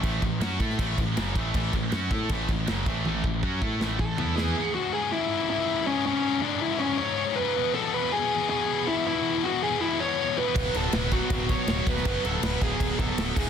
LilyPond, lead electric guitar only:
\new Staff \with { instrumentName = "Lead electric guitar" } { \time 4/4 \key cis \phrygian \tempo 4 = 160 r1 | r1 | r2 r8 a'4 gis'8~ | gis'8 fis'8 gis'8 e'4 e'4 cis'8 |
cis'4 d'8 e'8 cis'8 cis''4 b'8~ | b'8 a'8 b'8 gis'4 gis'4 e'8 | e'4 fis'8 gis'8 e'8 cis''4 b'8~ | b'8 a'8 b'8 fis'4 cis''4 b'8~ |
b'8 a'8 b'8 gis'4 a'4 gis'8 | }